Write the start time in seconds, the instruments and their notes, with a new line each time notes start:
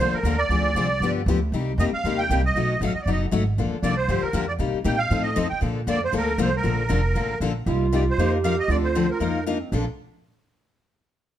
Already playing: accordion C5
0.00 upright bass D2, steel-string acoustic guitar D3 F3 A#3 D4 A4
0.13 accordion A#4, muted upright bass stroke
0.23 upright bass D#2, steel-string acoustic guitar D3 F3 A#3 D4 A4
0.38 accordion D5
0.49 upright bass D2, steel-string acoustic guitar D3 F3 C4 D4 G#4
0.75 upright bass C2, steel-string acoustic guitar D3 F3 C4 D4 G#4
1.00 upright bass G2, steel-string acoustic guitar D3 F3 B3 D4 G4
1.26 upright bass D2, steel-string acoustic guitar D3 F3 B3 D4 G4
1.52 upright bass C2, steel-string acoustic guitar C3 G3 A#3 D#4 G4
1.78 upright bass F2, steel-string acoustic guitar C3 G3 A#3 D#4 G4, accordion D#5
1.92 accordion F5, muted upright bass stroke
2.04 upright bass D#2, steel-string acoustic guitar C3 G3 A#3 D#4 G4
2.18 accordion G5
2.30 upright bass C2, steel-string acoustic guitar C3 G3 A#3 D#4 G4
2.46 accordion D#5
2.55 upright bass B1, steel-string acoustic guitar B2 F#3 A3 D#4 F#4
2.81 upright bass A1, steel-string acoustic guitar B2 F#3 A3 D#4 F#4, accordion F5
2.94 accordion D#5, muted upright bass stroke
3.02 accordion D5
3.06 upright bass F#1, steel-string acoustic guitar B2 F#3 A3 D#4 F#4
3.12 accordion D#5
3.31 upright bass G#1, steel-string acoustic guitar B2 F#3 A3 D#4 F#4
3.58 upright bass A#1, steel-string acoustic guitar D3 F3 A#3 D4 A4
3.73 muted upright bass stroke
3.83 upright bass C2, steel-string acoustic guitar D3 F3 A#3 D4 A4, accordion D5
3.97 accordion C5
4.08 upright bass G2, steel-string acoustic guitar D3 F3 A#3 D4 G4
4.22 accordion A#4, muted upright bass stroke
4.33 upright bass F2, steel-string acoustic guitar D3 F3 A#3 D4 G4
4.48 accordion D5
4.59 steel-string acoustic guitar C3 G3 A#3 D#4 G4, upright bass C3
4.73 muted upright bass stroke
4.84 upright bass A#2, steel-string acoustic guitar C3 G3 A#3 D#4 G4, accordion G5
4.98 accordion F5
5.11 upright bass A2, steel-string acoustic guitar F3 C4 D#4 A4
5.22 accordion D#5
5.36 upright bass F2, steel-string acoustic guitar F3 C4 D#4 A4
5.49 accordion G5, muted upright bass stroke
5.61 upright bass A#2, steel-string acoustic guitar D3 F3 A#3 D4 A4
5.87 upright bass F2, steel-string acoustic guitar D3 F3 A#3 D4 A4, accordion D5
6.04 accordion C5
6.12 upright bass D2, steel-string acoustic guitar D3 F3 A#3 D4 A4
6.17 accordion A#4
6.38 upright bass C2, steel-string acoustic guitar D3 F3 A#3 D4 A4
6.42 accordion C5
6.56 accordion A#4
6.63 upright bass A#1, steel-string acoustic guitar D3 F3 A#3 D4 A4
6.89 upright bass F1, steel-string acoustic guitar D3 F3 A#3 D4 A4
7.15 upright bass A1, steel-string acoustic guitar D3 F3 A#3 D4 A4
7.40 upright bass A#1, steel-string acoustic guitar D3 F3 A#3 D4 A4
7.66 upright bass C2, steel-string acoustic guitar C3 G3 A#3 D#4 G4, clarinet F4
7.92 steel-string acoustic guitar C3 G3 A#3 D#4 G4, accordion D5
8.10 accordion C5
8.18 upright bass F2, steel-string acoustic guitar F3 A#3 D#4 F4 A#4, clarinet G4
8.44 steel-string acoustic guitar F3 A#3 D#4 F4 A#4, accordion F5
8.60 accordion D#5
8.68 upright bass D2, steel-string acoustic guitar D3 F3 C4 D4 A4, clarinet F4, accordion D5
8.84 accordion C5
8.95 steel-string acoustic guitar D3 F3 C4 D4 A4
9.10 accordion A#4
9.20 upright bass F2, steel-string acoustic guitar F3 A#3 D#4 F4 A#4, clarinet D#4
9.46 steel-string acoustic guitar F3 A#3 D#4 F4 A#4, clarinet D4
9.60 clarinet C4
9.72 upright bass A#1, steel-string acoustic guitar A#2 D3 F3 A#3 D4 A4, clarinet D4